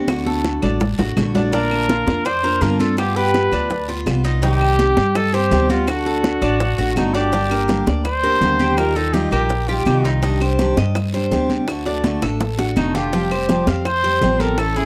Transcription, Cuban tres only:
Already playing: F#4
0.26 A4
0.63 D4
0.99 F#4
1.35 D4
1.53 D4
1.89 F4
2.26 D5
2.44 A#4
2.80 F4
3.16 G4
3.53 D4
3.89 F4
4.25 D#4
4.43 D#4
4.79 G4
5.15 D#5
5.34 C5
5.70 F#4
6.06 A4
6.42 D4
6.78 F#4
7.14 D4
7.33 D4
7.51 A#4
7.88 D5
8.23 A#4
8.60 G4
8.96 D#4
9.32 A#4
9.69 G4
10.05 D#4
10.23 D#4
10.41 C5
10.78 D#5
11.14 C5
11.86 D4
12.22 A4
12.59 F#4
12.95 F4
13.13 F4
13.31 C5
13.68 F5
14.04 C5
14.40 A4
14.76 E4

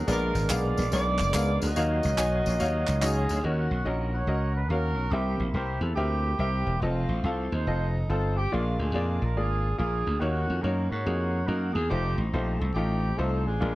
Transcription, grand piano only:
0.07 A#2 B3 G#4 A#4 D5
0.50 B3 G#4 A#4 F5
0.92 B3 G#4 A#4 D5
1.35 B3 G#4 A#4 F5
1.76 D#3 D#4 F#4 C#5 F5
2.17 D#4 F#4 C#5 G#5
2.59 D#4 F#4 C#5 F5
3.02 D#4 F#4 C#5 D#5
3.44 D#3 C#4 F#4 A#4 D#5
3.85 C#4 F#4 A#4 D#5
4.28 C#4 F#4 A#4 D#5
4.71 C#4 F#4 A#4 F5
5.13 C3 C4 G4 A#4 E5
5.55 C4 G4 A#4 C5
5.97 C4 G4 A#4 E5
6.39 C4 G4 A#4 E5
6.83 C4 F4 A4 D#5
7.25 C4 F4 A4 F5
7.67 C4 F4 A4 D#5
8.09 C4 F4 A4 C5
8.52 A#2 A#3 F4 G#4 D5
8.94 A#3 F4 G#4 D5
9.37 A#3 F4 G#4 D5
9.78 A#3 F4 G#4 A#4
10.20 D#3 A#3 D#4 F#4 C#5
10.63 A#3 D#4 F#4 C#5
11.06 A#3 D#4 F#4 G#4
11.48 A#3 D#4 F#4 A#4
11.90 A3 D#4 F4 C5
12.33 A3 D#4 F4 C5
12.76 A3 D#4 F4 G4
13.18 A3 D#4 F4 C5
13.60 A#2 G#3 D4 F4 A#4

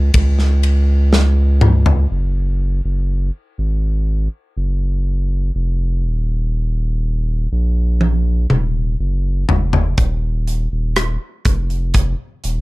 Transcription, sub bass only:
Already playing: C#2
0.14 C#2
2.11 F#1
2.85 F#1
3.58 G#1
4.57 F#1
5.55 F1
6.04 D#1
7.52 A#1
8.50 D#1
9.00 F#1
9.49 F1
9.98 D#1
10.72 D#1
11.45 F1
12.44 D#1

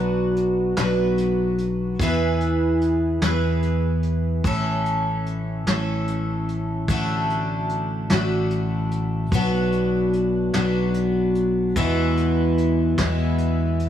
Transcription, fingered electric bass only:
Already playing: B1
0.78 B1
2.00 E2
3.22 E2
4.44 A1
5.67 A1
6.89 A1
8.11 A1
9.32 B1
10.55 B1
11.76 E2
12.98 E2

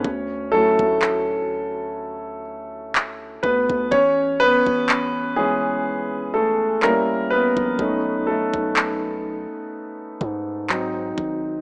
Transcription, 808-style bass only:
0.05 D2
0.79 D2
3.44 D2
3.70 D2
3.92 A1
4.67 A1
7.57 A#1
7.79 B1
8.54 B1
10.21 G#2
11.18 G#1

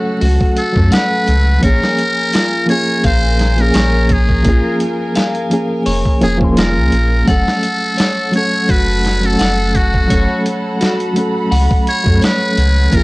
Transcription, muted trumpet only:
Already playing: F#4
0.58 A4
0.93 B4
1.64 A#4
2.70 C#5
3.06 C5
3.61 A#4
4.12 G#4
6.23 G#4
6.59 A#4
7.29 A4
8.35 C#5
8.70 B4
9.26 A4
9.76 F#4
11.89 C#5
12.25 B4
12.95 A#4

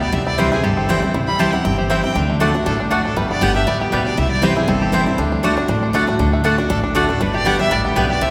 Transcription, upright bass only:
0.13 C2
0.64 G1
1.14 C2
1.65 G1
2.15 D2
2.66 A1
3.16 G1
3.42 G1
3.67 A1
3.92 B1
4.18 C2
4.68 G1
5.19 D2
5.69 A1
6.19 D2
6.70 A1
7.20 G1
7.71 A1
7.96 B1
8.21 C2

